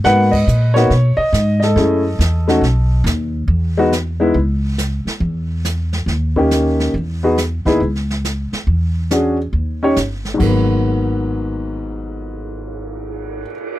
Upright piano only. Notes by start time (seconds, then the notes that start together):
0.04 A#3 B3 D#4 F#4 B4 F#5
0.31 D#5
0.74 A#3 B3 D#4 F#4 C#5
1.17 D#5
1.60 A4 D#5
1.76 A3 C#4 E4 G#4
2.48 A3 C#4 D#4 F#4
3.77 G#3 B3 D#4 F#4
4.20 G#3 B3 D#4 E4
6.36 A#3 C#4 D#4 G4
7.23 B3 D#4 F#4 G#4
7.66 B3 D#4 E4 G#4
9.11 C#4 D4 F#4 G#4
9.83 C#4 D#4 G4 C#5
10.34 G#2 F#3
10.42 A#3
10.46 B3